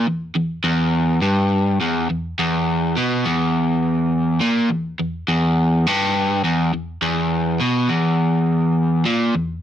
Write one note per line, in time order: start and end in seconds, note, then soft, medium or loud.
0.07 0.30 E2 medium
0.36 0.59 E2 medium
0.64 1.21 E2 medium
1.22 1.79 G2 medium
1.81 2.08 E2 medium
2.10 2.33 E2 medium
2.39 2.96 E2 medium
2.97 3.24 B2 medium
3.25 4.40 E2 medium
4.41 4.69 A#2 medium
4.70 4.93 E2 medium
5.00 5.22 E2 medium
5.28 5.87 E2 medium
5.87 6.44 G2 medium
6.44 6.72 E2 medium
6.74 6.97 E2 medium
7.02 7.59 E2 medium
7.61 7.89 B2 medium
7.89 9.04 E2 medium
9.06 9.34 A#2 medium
9.34 9.58 E2 medium